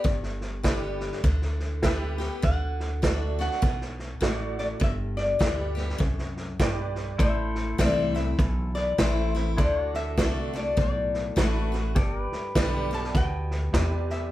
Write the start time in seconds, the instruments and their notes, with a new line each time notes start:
Already playing: resonator guitar played with a steel bar D5
0.04 upright bass G1, steel-string acoustic guitar G2, kick, snare
0.23 snare
0.41 snare
0.63 steel-string acoustic guitar D3 G3 B3 G4, honky-tonk piano G4 B4 D5, kick, snare, hi-hat pedal
1.00 snare
1.12 snare
1.23 upright bass D2, steel-string acoustic guitar D3, kick, snare
1.42 snare
1.60 snare
1.82 steel-string acoustic guitar D3 G3 B3 G4, honky-tonk piano G4 B4 E5, kick, snare, hi-hat pedal
2.18 steel-string acoustic guitar B3 G4, snare
2.42 upright bass D2, steel-string acoustic guitar D3, resonator guitar played with a steel bar F#5, kick, snare
2.80 snare
3.02 steel-string acoustic guitar D3 A3 D4 F#4, honky-tonk piano F#4 A4 D5, kick, snare, hi-hat pedal
3.14 resonator guitar played with a steel bar E5
3.39 steel-string acoustic guitar D4 F#4, resonator guitar played with a steel bar F#5, snare
3.51 snare
3.62 upright bass B1, steel-string acoustic guitar B2, kick, snare
3.81 snare
3.99 snare
4.21 upright bass A1, steel-string acoustic guitar A2, honky-tonk piano F#4 A4 D5, kick, snare, hi-hat pedal
4.58 resonator guitar played with a steel bar D5, snare
4.80 upright bass G1, steel-string acoustic guitar G2, resonator guitar played with a steel bar E5, kick, snare
5.17 resonator guitar played with a steel bar D5, snare
5.39 upright bass D2, steel-string acoustic guitar D3 G3 B3 G4, honky-tonk piano G4 B4 D5, kick, snare, hi-hat pedal
5.75 steel-string acoustic guitar B3 G4, snare
5.89 snare
5.98 upright bass C2, steel-string acoustic guitar F#2, kick, snare
6.18 snare
6.37 snare
6.59 upright bass B1, steel-string acoustic guitar G2, honky-tonk piano G4 B4 D5, resonator guitar played with a steel bar G5, kick, snare, hi-hat pedal
6.95 snare
7.18 upright bass A1, steel-string acoustic guitar A2, pedal steel guitar E4 A4 C5, resonator guitar played with a steel bar E5, kick, snare
7.55 snare
7.78 upright bass C2, steel-string acoustic guitar E3 A3 C4 E4, honky-tonk piano E4 A4 C5, resonator guitar played with a steel bar D5, kick, snare, hi-hat pedal
8.15 steel-string acoustic guitar C4 E4, resonator guitar played with a steel bar E5, snare
8.38 upright bass B1, steel-string acoustic guitar E2, kick, snare
8.75 resonator guitar played with a steel bar D5, snare
8.98 upright bass A1, steel-string acoustic guitar E3 A3 C4 E4, honky-tonk piano E4 A4 C5, resonator guitar played with a steel bar C5, kick, snare, hi-hat pedal
9.35 steel-string acoustic guitar C4 E4, snare
9.57 upright bass D2, steel-string acoustic guitar D3, pedal steel guitar E4 A4 C5, resonator guitar played with a steel bar D5, kick, snare
9.82 pedal steel guitar F#4 D5
9.94 resonator guitar played with a steel bar E5, snare
10.17 upright bass C2, steel-string acoustic guitar D3 A3 D4 F#4, honky-tonk piano F#4 A4 D5, kick, snare, hi-hat pedal
10.54 steel-string acoustic guitar D4 F#4, resonator guitar played with a steel bar D5, snare
10.77 upright bass B1, steel-string acoustic guitar A2, kick, snare
10.81 resonator guitar played with a steel bar D5
11.14 snare
11.36 upright bass A1, steel-string acoustic guitar D3 A3 D4 F#4, honky-tonk piano F#4 A4 B4, kick, snare, hi-hat pedal
11.72 steel-string acoustic guitar D4 F#4, snare
11.95 upright bass G1, steel-string acoustic guitar G2, pedal steel guitar G4 A4 D5, kick, snare
12.22 pedal steel guitar B4
12.32 muted upright bass stroke, snare
12.55 upright bass B1, steel-string acoustic guitar D3 G3 B3 G4, honky-tonk piano G4 B4 D5, kick, snare, hi-hat pedal
12.91 steel-string acoustic guitar B3 G4, resonator guitar played with a steel bar A5, snare
13.04 snare
13.15 upright bass D2, steel-string acoustic guitar B2, resonator guitar played with a steel bar G5, kick, snare
13.51 snare
13.73 upright bass E2, steel-string acoustic guitar C3, honky-tonk piano G4 B4 D5, kick, snare, hi-hat pedal
13.78 resonator guitar played with a steel bar F#5
14.10 resonator guitar played with a steel bar E5, snare